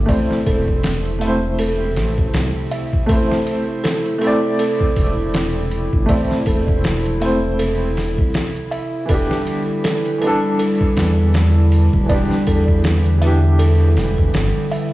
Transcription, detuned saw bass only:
0.09 A1
0.47 E1
1.96 A1
2.34 C2
3.09 A1
4.97 E1
5.93 G1
6.09 A1
6.47 E1
8.18 C2
9.09 E1
10.97 E2
11.93 D1
12.10 E1
12.47 E2
13.97 E1
14.34 G1

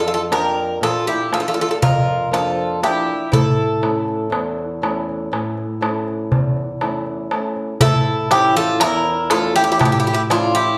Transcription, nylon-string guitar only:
Already playing: F2 A#3 D4 F4
0.30 A#3 D4 F4
0.81 A#2
1.31 A#3 D4 F4
1.82 F2
2.31 F3 A#3 D4
2.82 A#3 D4
3.32 A2
3.82 A3 C#4 E4
4.30 E2
4.82 A3 C#4 E4
5.32 A2
5.81 A3 C#4 E4
6.32 E2
6.81 A3 C#4 E4
7.33 A3 C#4 E4
7.81 A2
8.32 E3 C#4 E4
8.82 E2
9.32 A3 C#4 E4
9.81 A2
10.30 A3 C#4 E4

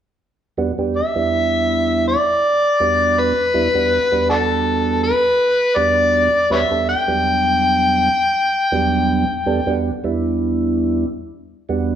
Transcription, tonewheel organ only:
0.57 E2 G3 B3 D4 F#4
0.78 E2 G3 B3 D4 G4
1.15 E2 G3 B3 D4 E4
2.80 E2 G3 B3 D4 F#4
3.54 E2 G3 B3 D4 E4
3.74 E2 G3 B3 D4 F#4
4.12 E2 G3 B3 D4 F#4
5.76 E2 G3 B3 D4 F#4
6.50 E2 G3 B3 D4 F#4
6.71 E2 G3 B3 D4 A4
7.07 E2 F#3 G3 B3 D4
8.72 E2 F#3 G3 B3 D4
9.46 E2 G3 B3 D4 A4
9.66 E2 G3 B3 D4 F#4
10.04 E2 G3 B3 D4 E4
11.69 E2 G3 B3 D4 F#4

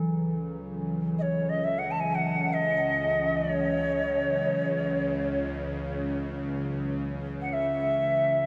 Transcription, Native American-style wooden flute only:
1.18 C#5 D#5
1.49 D#5
1.64 E5
1.78 F#5
1.91 A5
2.00 G#5
2.14 F#5
2.53 D#5
3.36 C#5
7.41 F#5
7.49 E5 F#5

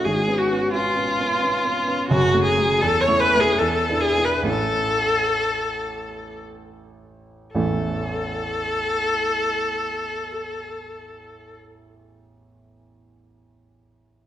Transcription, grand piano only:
0.05 G#1
0.28 B3 C#4
0.51 B3 C#4
0.74 B3 C#4
0.97 B3 C#4
1.19 B3 C#4
1.42 B3 C#4
1.65 B3 C#4
1.88 B3 C#4
2.10 F#1 F#2
2.34 A3 C#4
2.58 A3 C#4
2.82 E2
3.08 A3 C#4 E4
3.35 A3 C#4 E4
3.60 E2
3.88 B3 D4 E4
4.18 B3 D4 E4
4.43 A1 A3 C#4 E4
7.55 A1 E2 E3 A3 C#4 E4

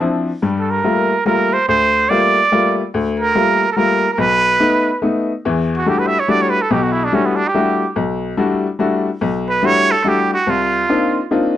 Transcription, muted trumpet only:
0.59 A4
0.70 A#4
1.26 A#4
1.53 C5
1.69 C5
2.09 D5
3.20 A#4
3.72 A4
3.76 A#4
4.13 A#4
4.20 B4
5.77 F#4
5.89 G4
5.99 B4
6.07 E5
6.19 C#5
6.30 D5
6.42 C#5
6.50 B4
6.62 A4
6.72 G4
6.83 F#4
6.92 E4
7.04 D4
7.15 C#4
7.26 B3
7.36 D4
7.48 G4
9.49 B4
9.66 C#5
9.91 A4
10.08 G4
10.34 F#4
10.50 F4

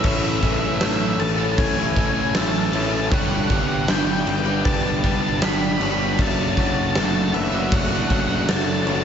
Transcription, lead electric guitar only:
0.05 E5
0.13 E5
0.21 E5
0.28 E5
0.37 E5
0.43 E5
0.53 E5
0.61 E5
0.68 E5
0.76 E5
0.85 E5
0.93 E5
1.00 E5
1.08 E5
1.20 A5
1.29 A5
1.36 A5
1.43 A5
1.52 A5
1.59 G#5
1.67 G#5
1.74 G#5
1.82 G#5
1.90 G#5
1.98 G#5
2.06 G#5
2.13 G#5
2.21 G#5
2.29 G#5
2.35 A5
2.43 A5
2.51 A5
2.60 A5
2.65 A5
2.75 A5
2.83 A5
2.91 A5
2.98 A5
3.06 A5
3.11 F#5
3.20 F#5
3.27 F#5
3.35 F#5
3.44 F#5
3.52 F#5
3.59 F#5
3.68 F#5
3.75 F#5
3.83 F#5
3.89 G5
3.97 G5
4.05 G5
4.13 G5
4.21 G5
4.29 G5
4.36 G5
4.43 G5
4.53 G5
4.61 G5 A5
4.73 A5
4.81 A5
4.88 A5
4.96 A5
5.04 A5
5.11 A5
5.20 A5
5.28 A5
5.37 A5
5.42 B5
5.50 B5
5.58 B5
5.66 B5
5.74 B5
5.83 B5
5.90 B5
5.98 B5
6.06 B5
6.13 B5
6.20 A5
6.27 A5
6.35 A5
6.43 A5
6.51 A5
6.59 A5
6.67 A5
6.74 A5
6.82 A5
6.91 A5
6.99 A5
7.06 A5
7.15 A5
7.22 A5
7.34 E5
7.41 E5
7.48 E5
7.55 E5
7.62 E5
7.72 F#5
7.80 F#5
7.88 F#5
7.95 F#5
8.04 F#5
8.12 F#5
8.20 F#5
8.26 F#5
8.36 F#5
8.43 F#5
8.49 A5
8.57 A5
8.64 A5
8.72 A5
8.81 A5
8.88 A5
8.96 A5

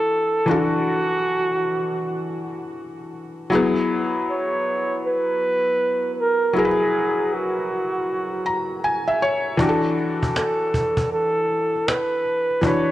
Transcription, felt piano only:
Already playing: E3 D4 F#4 A4
0.46 E3 D4 F#4
0.51 A4
3.50 F#3 E4 G#4
3.55 B3
6.53 F#3 E4 G#4
6.58 A#4
6.65 B4
8.46 A#5
8.84 G#5
9.08 E5
9.22 C#5
9.57 E3 D4 F#4
9.62 G4
9.69 A4
12.61 E3 D4 F#4
12.67 B4

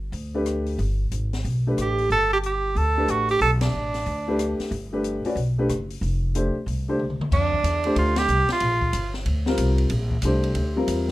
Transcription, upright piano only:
0.34 A3 D4 G4 B4
1.67 A3 D4 G4 B4
2.97 A3 D4 G4 B4
4.28 A3 D4 G4 B4
4.93 A3 D4 G4 B4
5.25 C#4 F#4 B4 D5
5.58 A3 D4 G4 B4
6.35 A3 D4 G4 C5
6.88 A3 D4 G4 C5
7.85 A3 D4 G4 C5
9.47 G3 C4 F4 A#4
10.24 A3 D4 G4 C5
10.76 G3 C4 F4 A#4

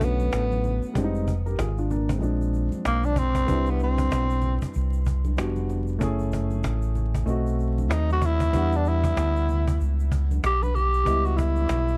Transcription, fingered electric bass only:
Already playing: B1
0.33 A1
0.83 muted fingered electric bass stroke
0.96 F1
1.59 G#1
2.22 A#1
2.73 muted fingered electric bass stroke
2.85 B1
3.49 C2
4.12 B1
4.76 C2
5.38 F1
6.02 F#1
6.65 A1
7.26 B1
7.90 D#2
8.54 E2
9.17 D2
9.81 C#2
10.43 B1
11.06 C#2
11.69 B1

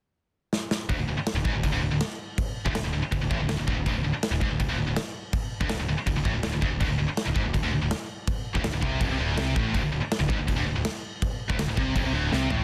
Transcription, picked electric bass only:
0.89 D1
0.98 D1
1.07 D1
1.16 muted picked electric bass stroke
1.34 D1
1.45 G#1
1.53 D1
1.63 D1
1.72 D1
1.81 D1
1.91 D1
2.66 D1
2.75 D1
2.84 D1
2.94 D1
3.04 muted picked electric bass stroke
3.12 D1
3.23 D1
3.31 A1
3.39 D1
3.49 D1
3.59 D1
3.68 D1
3.76 D1
3.86 D1
3.95 D1
4.04 D1
4.14 muted picked electric bass stroke
4.31 D1
4.41 G#1
4.50 D1
4.59 D1
4.68 D1
4.78 D1
4.87 D1
5.61 D1
5.70 D1
5.78 D1
5.88 D1
5.97 muted picked electric bass stroke
6.07 D1
6.15 D1
6.25 A1
6.35 D1
6.44 D1
6.54 D1
6.62 D1
6.72 D1
6.80 D1
6.90 D1
6.99 D1
7.09 muted picked electric bass stroke
7.27 D1
7.35 G#1
7.46 D1
7.54 D1
7.63 D1
7.73 D1
7.81 D1
8.55 D1
8.64 D1
8.72 D1
8.83 C2
9.01 F1
9.09 C2
9.18 D1
9.36 C2
9.56 A1
9.74 D1
9.83 D1
9.92 D1
10.02 muted picked electric bass stroke
10.20 D1
10.30 G#1
10.39 D1
10.48 D1
10.58 D1
10.67 D1
10.76 D1
11.50 D1
11.58 D1
11.68 D1
11.77 C2
11.95 F1
12.04 C2
12.14 D1
12.32 C2
12.50 A1

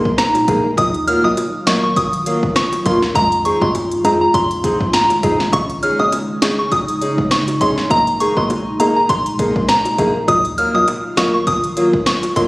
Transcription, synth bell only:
0.18 A#5
0.78 D#6
1.07 F6
1.24 D#6
1.67 C#6
1.84 C#6
1.97 D#6
2.56 C#6
2.86 C6
3.15 A#5
3.45 C#6
3.62 C6
4.05 A#5
4.21 A#5
4.34 C6
4.94 A#5
5.53 C#6
5.83 F6
5.99 D#6
6.42 C#6
6.59 C#6
6.72 D#6
7.31 C#6
7.61 C6
7.91 A#5
8.20 C#6
8.37 C6
8.80 A#5
8.96 A#5
9.09 C6
9.69 A#5
10.28 D#6
10.58 F6
10.75 D#6
11.17 C#6
11.34 C#6
11.47 D#6
12.07 C#6
12.36 C6

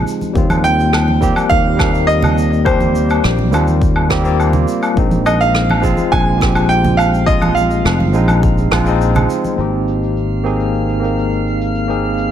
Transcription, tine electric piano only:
Already playing: F3 G#3 C4 D#4 F4
0.33 G3 A#3 C4
0.38 F4
1.21 G3 A#3 C4 G4
1.77 G3 A#3 C4
1.82 A#4
2.64 G3 A#3 C4 G4
3.51 G3 A#3 C4 F4
4.09 G3 A#3 C4 G4
4.22 G3 A#3 C4
4.27 F4
4.94 F3 G#3 C4
4.99 D#4
5.82 F3 G#3 C4 F4
6.38 F3 G#3 C4
6.43 G4
7.26 F3 G#3 C4 F4
8.13 F3 G#3 C4 D#4
8.71 F3 G#3 C4 F4
8.84 F3 G#3 C4
8.89 D#4
9.55 A#3 C4 D#4
9.60 G4
10.43 A#3 C4 D#4 G#4
11.00 A#3 C4 D#4
11.05 A#4
11.88 A#3 C4 D#4 G#4

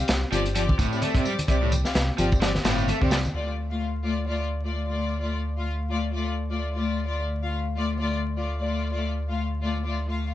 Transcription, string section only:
0.00 C4 G4 F5
0.32 C4 G4 D5
0.56 C4 G4 D5
0.92 C4 G4 D5
1.16 C4 G4 D5
1.48 C4 G4 D5
1.85 C4 G4 F5
2.19 C4 G4 D5
2.42 C4 G4 D5
2.65 C4 G4 F5
3.02 C4 G4 D5
3.35 A3 F4 D5
3.71 A3 F4 F5
4.05 A3 F4 D5
4.28 A3 F4 D5
4.64 A3 F4 D5
4.88 A3 F4 D5
5.21 A3 F4 D5
5.58 A3 F4 F5
5.91 A3 F4 D5
6.14 A3 F4 D5
6.51 A3 F4 D5
6.74 A3 F4 D5
7.07 A3 F4 D5
7.44 A3 F4 F5
7.77 A3 F4 D5
8.00 A3 F4 D5
8.37 A3 F4 D5
8.60 A3 F4 D5
8.93 A3 F4 D5
9.29 A3 F4 F5
9.63 A3 F4 D5
9.86 A3 F4 D5
10.09 A3 F4 F5

